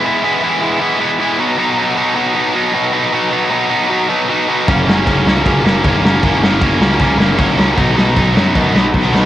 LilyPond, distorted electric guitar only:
\new Staff \with { instrumentName = "Distorted electric guitar" } { \clef bass \time 4/4 \key b \major \tempo 4 = 155 <e gis b e'>8 <e gis b e'>8 <e gis b e'>8 <e gis b e'>8 <e gis b e'>8 <e gis b e'>8 <e gis b e'>8 <b, fis b dis'>8 | <b, fis b dis'>8 <b, fis b dis'>8 <b, fis b dis'>8 <b, fis b dis'>8 <b, fis b dis'>8 <b, fis b dis'>8 <b, fis b dis'>8 <b, fis b dis'>8 | <b, fis b dis'>8 <b, fis b dis'>8 <b, fis b dis'>8 <b, fis b dis'>8 <b, fis b dis'>8 <b, fis b dis'>8 <b, fis b dis'>8 <b, fis b dis'>8 | <fis, cis fis ais cis'>8 <fis, cis fis ais cis'>8 <fis, cis fis ais cis'>8 <fis, cis fis ais cis'>8 <fis, cis fis ais cis'>8 <fis, cis fis ais cis'>8 <fis, cis fis ais cis'>8 <fis, cis fis ais cis'>8 |
<fis, cis fis ais cis'>8 <fis, cis fis ais cis'>8 <fis, cis fis ais cis'>8 <fis, cis fis ais cis'>8 <fis, cis fis ais cis'>8 <fis, cis fis ais cis'>8 <fis, cis fis ais cis'>8 <fis, cis fis ais cis'>8 | <b, fis b dis'>8 <b, fis b dis'>8 <b, fis b dis'>8 <b, fis b dis'>8 <b, fis b dis'>8 <b, fis b dis'>8 <b, fis b dis'>8 <b, fis b dis'>8 | }